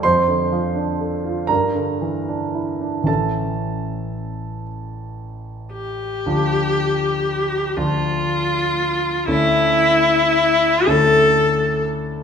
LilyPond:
<<
  \new Staff \with { instrumentName = "Viola" } { \time 6/8 \key d \minor \tempo 4. = 39 r2. | r2 r8 g'8~ | g'4. f'4. | e'4. a'4 r8 | }
  \new Staff \with { instrumentName = "Grand piano" } { \time 6/8 \key d \minor <c'' c'''>4. <bes' bes''>4. | <a' a''>4. r4. | <d, f d'>4. <d, f d'>4. | <d, a cis' e'>4. <d, a cis' e'>4. | }
  \new Staff \with { instrumentName = "Grand piano" } { \time 6/8 \key d \minor f,16 d16 f16 d'16 a'16 f'16 g,16 d16 e16 d'16 e'16 d'16 | <a,, e cis' e'>2. | r2. | r2. | }
>>